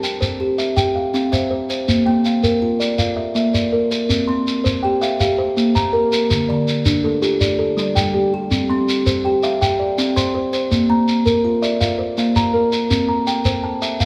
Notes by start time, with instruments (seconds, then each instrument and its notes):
Already playing: kalimba C4 A5
0.04 kalimba G5, shekere
0.21 kalimba C5, shekere
0.40 kalimba G4
0.58 kalimba E5, shekere
0.77 kalimba G4 G5, shekere
0.96 kalimba F5
1.14 kalimba C4 F5, shekere
1.32 kalimba C5 E5, shekere
1.51 kalimba C5
1.70 kalimba C5, shekere
1.88 kalimba A#3, shekere
2.06 kalimba A#3 G5
2.25 kalimba F5, shekere
2.43 kalimba A#4, shekere
2.62 kalimba F4
2.80 kalimba D5, shekere
2.98 kalimba F4 F5, shekere
3.16 kalimba E5
3.35 kalimba A#3 E5, shekere
3.54 kalimba A#4 D5, shekere
3.72 kalimba A#4
3.91 kalimba A#4, shekere
4.09 kalimba C4, shekere
4.28 kalimba C4 C6
4.48 shekere
4.64 kalimba C5, shekere
4.83 kalimba G4 G5
5.01 kalimba E5 F5, shekere
5.20 kalimba G4 F5, shekere
5.38 kalimba C5
5.57 kalimba A#3, shekere
5.75 kalimba A#3 A#5, shekere
5.93 kalimba A#4
6.12 kalimba A#4, shekere
6.30 kalimba D3, shekere
6.49 kalimba D3 D5
6.68 shekere
6.86 kalimba D4, shekere
7.04 kalimba A3 A4
7.22 kalimba F4 G4, shekere
7.41 kalimba A3 D5, shekere
7.59 kalimba A4
7.77 kalimba G3 D5, shekere
7.95 kalimba G3 G5, shekere
8.14 kalimba G4
8.34 kalimba G4
8.51 kalimba C4, shekere
8.70 kalimba C4 C6
8.89 shekere
9.06 kalimba C5, shekere
9.25 kalimba G4 G5
9.43 kalimba E5 F5, shekere
9.61 kalimba G4 G5, shekere
9.79 kalimba D5
9.98 kalimba C4 G5, shekere
10.16 kalimba C5 C6, shekere
10.34 kalimba C5
10.53 kalimba C5, shekere
10.71 kalimba A#3, shekere
10.90 kalimba A#3 A#5
11.08 shekere
11.26 kalimba A#4, shekere
11.45 kalimba F4
11.62 kalimba D5 E5, shekere
11.81 kalimba F4 F5, shekere
11.99 kalimba C5
12.18 kalimba A#3 F5, shekere
12.36 kalimba A#4 A#5, shekere
12.54 kalimba A#4
12.72 kalimba A#4, shekere
12.90 kalimba C4, shekere
13.09 kalimba A#5
13.27 kalimba G5, shekere
13.45 kalimba C5, shekere
13.64 kalimba A5
13.82 kalimba E5, shekere
14.00 kalimba F5, shekere